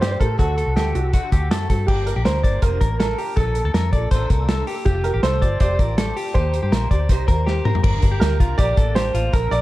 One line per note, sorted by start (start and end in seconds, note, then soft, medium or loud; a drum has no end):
0.01 0.18 G2 medium
0.01 0.20 F3 medium
0.01 0.20 C4 medium
0.01 0.20 G4 medium
0.01 0.19 A4 medium
0.01 0.03 C5 medium
0.01 snare loud
0.01 closed hi-hat medium
0.06 0.11 D5 medium
0.11 0.20 C5 medium
0.20 0.36 A2 medium
0.20 0.37 C4 soft
0.20 0.38 G4 medium
0.20 0.38 A4 medium
0.20 0.39 A#4 medium
0.20 kick medium
0.20 closed hi-hat medium
0.38 0.63 D2 loud
0.38 0.57 D3 medium
0.38 0.57 A3 medium
0.38 0.58 C4 medium
0.38 0.57 F#4 medium
0.38 0.74 A4 medium
0.38 0.56 A4 medium
0.38 kick loud
0.38 closed hi-hat medium
0.57 0.75 C4 soft
0.57 0.76 F#4 soft
0.57 0.76 A4 soft
0.57 0.76 A4 medium
0.57 closed hi-hat medium
0.66 0.75 C2 medium
0.76 0.92 D2 medium
0.76 0.95 A3 medium
0.76 0.95 C4 medium
0.76 0.95 F#4 medium
0.76 1.11 G4 medium
0.76 0.95 A4 medium
0.76 0.94 A4 medium
0.76 snare medium
0.76 closed hi-hat medium
0.94 1.19 C2 medium
0.94 1.13 C4 soft
0.94 1.30 F#4 medium
0.94 1.12 F#4 soft
0.94 1.13 A4 soft
0.94 closed hi-hat medium
1.13 1.32 D3 medium
1.13 1.32 A3 medium
1.13 1.32 C4 medium
1.13 1.32 F#4 medium
1.13 1.31 A4 medium
1.13 kick medium
1.13 closed hi-hat medium
1.32 1.50 D2 medium
1.32 1.51 C4 soft
1.32 1.51 F#4 soft
1.32 1.51 G4 medium
1.32 1.51 A4 medium
1.32 kick medium
1.32 closed hi-hat medium
1.50 1.67 F#2 medium
1.50 1.70 A3 medium
1.50 1.70 C4 medium
1.50 1.69 F#4 medium
1.50 1.68 A4 medium
1.50 snare loud
1.50 closed hi-hat medium
1.69 1.86 G2 medium
1.69 1.89 C4 soft
1.69 1.89 F#4 soft
1.69 1.88 A4 medium
1.69 kick medium
1.69 closed hi-hat medium
1.87 2.12 G1 medium
1.87 2.07 G2 medium
1.87 2.07 D3 medium
1.87 2.07 F3 medium
1.87 2.07 A#3 medium
1.87 2.06 D4 medium
1.87 2.07 G4 medium
1.87 2.15 G4 medium
1.87 2.05 A#4 medium
1.87 kick loud
1.87 crash medium
2.06 2.23 F3 soft
2.06 2.24 A#3 soft
2.06 2.25 D4 soft
2.06 2.11 A#4 medium
2.06 2.25 A#4 medium
2.06 closed hi-hat medium
2.16 2.24 A#1 medium
2.16 2.25 G4 medium
2.25 2.41 D2 medium
2.25 2.44 F3 medium
2.25 2.44 A#3 medium
2.25 2.44 D4 medium
2.25 2.43 A#4 medium
2.25 2.64 C5 medium
2.25 snare medium
2.25 closed hi-hat medium
2.43 2.60 G1 medium
2.43 2.61 F3 soft
2.43 2.62 A#3 soft
2.43 2.62 D4 medium
2.43 2.62 A#4 soft
2.43 2.62 D5 medium
2.43 kick medium
2.43 closed hi-hat medium
2.62 2.78 F1 medium
2.62 2.81 G2 medium
2.62 2.81 D3 medium
2.62 2.81 F3 medium
2.62 2.81 A#3 medium
2.62 2.80 D4 medium
2.62 2.98 A#4 medium
2.62 2.80 A#4 medium
2.62 2.80 C5 medium
2.62 kick medium
2.62 closed hi-hat medium
2.81 3.13 A1 medium
2.81 2.98 F3 soft
2.81 2.99 A#3 soft
2.81 3.00 D4 soft
2.81 2.99 A#4 medium
2.81 3.00 A#4 medium
2.81 kick medium
2.81 closed hi-hat medium
3.00 3.19 F3 medium
3.00 3.19 A#3 medium
3.00 3.18 D4 medium
3.00 3.19 A4 medium
3.00 3.38 A#4 medium
3.00 3.17 A#4 medium
3.00 snare loud
3.00 closed hi-hat medium
3.18 3.36 F3 soft
3.18 3.37 A#3 soft
3.18 3.37 D4 soft
3.18 3.37 G4 medium
3.18 3.37 A#4 medium
3.18 open hi-hat medium
3.36 3.61 A#1 medium
3.36 3.56 A#2 medium
3.36 3.56 D3 medium
3.36 3.56 F3 medium
3.36 3.56 A#3 medium
3.36 3.55 D4 medium
3.36 4.63 A4 medium
3.36 3.63 A4 medium
3.36 3.54 A4 medium
3.36 kick loud
3.36 closed hi-hat medium
3.55 3.73 F3 soft
3.55 3.74 A#3 soft
3.55 3.75 D4 medium
3.55 3.74 A4 soft
3.55 closed hi-hat medium
3.64 3.73 D2 medium
3.64 3.74 A4 medium
3.74 3.90 F2 medium
3.74 3.93 F3 medium
3.74 3.94 A#3 medium
3.74 3.94 D4 medium
3.74 3.93 A4 medium
3.74 3.92 A#4 medium
3.74 snare medium
3.74 closed hi-hat medium
3.93 4.09 A#1 medium
3.93 4.12 F3 soft
3.93 4.12 A#3 soft
3.93 4.12 D4 medium
3.93 4.12 A4 medium
3.93 4.11 D5 medium
3.93 kick medium
3.93 closed hi-hat medium
4.11 4.27 A1 medium
4.11 4.31 A#2 medium
4.11 4.31 D3 medium
4.11 4.31 F3 medium
4.11 4.30 A#3 loud
4.11 4.30 D4 loud
4.11 4.29 A4 loud
4.11 4.30 C5 medium
4.11 kick medium
4.11 closed hi-hat medium
4.30 4.62 C2 medium
4.30 4.47 F3 medium
4.30 4.48 A#3 soft
4.30 4.49 D4 medium
4.30 4.49 A4 medium
4.30 4.49 A#4 medium
4.30 kick medium
4.30 closed hi-hat medium
4.48 4.67 F3 medium
4.48 4.68 A#3 medium
4.48 4.67 D4 medium
4.48 4.67 A4 medium
4.48 4.66 A4 medium
4.48 snare loud
4.48 closed hi-hat medium
4.67 4.85 F3 medium
4.67 4.87 A#3 soft
4.67 4.87 D4 medium
4.67 4.84 G4 medium
4.67 4.86 A4 medium
4.67 open hi-hat medium
4.85 5.10 F1 loud
4.85 5.05 F3 medium
4.85 5.05 A3 medium
4.85 5.06 C4 medium
4.85 5.05 F4 medium
4.85 5.05 G4 medium
4.85 5.12 G4 loud
4.85 5.04 G4 medium
4.85 kick loud
4.85 closed hi-hat medium
5.04 5.24 C4 soft
5.04 5.24 F4 medium
5.04 5.24 G4 medium
5.04 5.24 A#4 medium
5.04 closed hi-hat medium
5.14 5.22 A1 medium
5.14 5.23 G4 medium
5.23 5.43 C2 medium
5.23 5.42 A3 medium
5.23 5.43 C4 medium
5.23 5.42 F4 medium
5.23 5.41 G4 medium
5.23 5.42 A4 medium
5.23 5.58 C5 loud
5.23 snare medium
5.23 closed hi-hat medium
5.42 5.58 G1 medium
5.42 5.60 C4 soft
5.42 5.61 F4 soft
5.42 5.61 G4 medium
5.42 5.60 D5 medium
5.42 kick medium
5.42 closed hi-hat medium
5.60 5.77 F1 medium
5.60 5.79 F3 medium
5.60 5.80 A3 medium
5.60 5.80 C4 medium
5.60 5.80 F4 medium
5.60 5.78 G4 medium
5.60 5.79 C5 medium
5.60 6.38 D5 loud
5.60 kick medium
5.60 closed hi-hat medium
5.79 6.11 A1 medium
5.79 5.97 C4 soft
5.79 5.98 F4 medium
5.79 5.98 G4 medium
5.79 5.97 A#4 medium
5.79 kick medium
5.79 closed hi-hat medium
5.97 6.17 A3 medium
5.97 6.17 C4 medium
5.97 6.16 F4 medium
5.97 6.15 G4 medium
5.97 6.17 A4 medium
5.97 snare loud
5.97 closed hi-hat loud
6.16 6.36 C4 soft
6.16 6.36 F4 medium
6.16 6.35 G4 medium
6.16 6.34 G4 medium
6.16 open hi-hat medium
6.34 6.59 D#2 loud
6.34 6.54 D#3 medium
6.34 6.54 G3 medium
6.34 6.54 A#3 medium
6.34 6.61 G4 medium
6.34 6.54 G4 medium
6.34 7.61 C5 medium
6.34 6.53 C5 medium
6.34 kick loud
6.34 closed hi-hat medium
6.54 6.72 A#3 soft
6.54 6.73 G4 soft
6.54 6.73 C5 medium
6.54 closed hi-hat medium
6.63 6.71 G2 medium
6.63 6.72 G4 medium
6.71 6.88 A#1 medium
6.71 6.91 G3 medium
6.71 6.92 A#3 medium
6.71 6.91 G4 medium
6.71 6.90 A#4 medium
6.71 6.90 C5 medium
6.71 snare loud
6.71 closed hi-hat medium
6.91 7.10 D2 medium
6.91 7.09 A#3 medium
6.91 7.10 G4 medium
6.91 7.10 C5 medium
6.91 7.10 D5 medium
6.91 kick medium
6.91 closed hi-hat medium
7.09 7.26 C2 medium
7.09 7.29 D#3 loud
7.09 7.29 G3 loud
7.09 7.29 A#3 loud
7.09 7.28 G4 loud
7.09 7.27 C5 medium
7.09 kick medium
7.09 closed hi-hat medium
7.28 7.60 D#2 medium
7.28 7.46 A#3 soft
7.28 7.47 G4 medium
7.28 7.47 A#4 medium
7.28 7.47 C5 medium
7.28 kick medium
7.28 closed hi-hat medium
7.47 7.66 G3 medium
7.47 7.65 A#3 medium
7.47 7.66 G4 medium
7.47 7.65 G4 medium
7.47 7.64 C5 medium
7.47 snare medium
7.65 7.83 A#3 medium
7.65 7.84 G4 medium
7.65 7.82 A#4 medium
7.65 7.84 C5 medium
7.65 mid tom medium
7.75 floor tom medium
7.84 8.00 G1 loud
7.84 8.03 G2 medium
7.84 8.03 D3 medium
7.84 8.03 F3 medium
7.84 8.02 A#3 medium
7.84 8.02 D4 medium
7.84 8.10 A#4 medium
7.84 8.00 A#4 medium
7.84 kick loud
7.84 crash medium
8.02 8.19 G1 medium
8.02 8.19 F3 soft
8.02 8.20 A#3 medium
8.02 8.21 D4 medium
8.02 8.21 A#4 medium
8.02 kick medium
8.02 closed hi-hat medium
8.12 8.38 G4 medium
8.20 8.40 D2 medium
8.20 8.40 F3 medium
8.20 8.40 A#3 medium
8.20 8.40 D4 medium
8.20 8.59 A#4 medium
8.20 8.39 A#4 medium
8.20 snare loud
8.20 closed hi-hat medium
8.40 8.56 C2 medium
8.40 8.58 F3 soft
8.40 8.58 A#3 soft
8.40 8.58 D4 soft
8.40 8.58 F4 medium
8.40 8.59 A#4 medium
8.40 kick medium
8.40 closed hi-hat medium
8.58 8.75 A#1 medium
8.58 8.77 G2 medium
8.58 8.78 D3 medium
8.58 8.77 F3 medium
8.58 8.77 A#3 medium
8.58 8.77 D4 medium
8.58 8.78 G4 medium
8.58 8.75 A#4 medium
8.58 8.93 D5 loud
8.58 kick medium
8.58 closed hi-hat medium
8.76 9.09 A1 medium
8.76 8.94 F3 soft
8.76 8.95 A#3 medium
8.76 8.96 D4 medium
8.76 8.96 A4 medium
8.76 8.96 A#4 medium
8.76 kick medium
8.76 closed hi-hat medium
8.95 9.14 F3 medium
8.95 9.14 A#3 medium
8.95 9.13 D4 medium
8.95 9.14 G4 medium
8.95 9.13 A#4 medium
8.95 9.34 C5 loud
8.95 snare loud
8.95 closed hi-hat loud
9.14 9.30 A1 medium
9.14 9.32 F3 soft
9.14 9.32 A#3 soft
9.14 9.33 D4 soft
9.14 9.33 F4 medium
9.14 9.33 A#4 medium
9.14 closed hi-hat medium
9.33 9.49 A#1 loud
9.33 9.52 A#2 medium
9.33 9.52 D3 medium
9.33 9.51 F3 medium
9.33 9.51 A#3 medium
9.33 9.50 D4 medium
9.33 9.49 A4 medium
9.33 9.53 A#4 medium
9.33 9.60 A#4 loud
9.33 kick loud
9.33 closed hi-hat medium
9.51 9.62 A#1 loud
9.51 9.62 F3 soft
9.51 9.62 A#3 soft
9.51 9.62 D4 soft
9.51 9.62 A4 medium
9.51 9.62 D5 loud
9.51 closed hi-hat medium